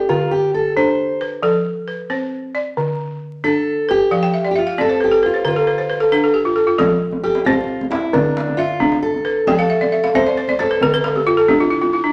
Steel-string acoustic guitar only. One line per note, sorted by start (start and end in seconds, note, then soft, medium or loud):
0.00 0.10 G4 medium
0.09 0.33 F4 medium
0.31 0.54 G4 medium
0.54 0.76 A4 medium
0.77 1.24 C5 medium
3.44 3.90 A4 medium
3.91 4.50 G4 medium
4.51 4.56 G4 medium
4.58 4.80 F4 medium
4.81 5.00 A4 medium
5.04 5.25 G4 medium
5.26 5.46 F4 medium
5.48 6.32 F4 medium
7.23 7.44 G4 medium
7.45 7.90 F4 medium
7.91 8.14 E4 medium
8.14 8.60 D4 medium
8.57 9.02 F4 medium
9.02 9.47 A4 medium
9.48 10.15 A4 medium
10.15 10.60 C5 loud
10.60 11.23 A4 medium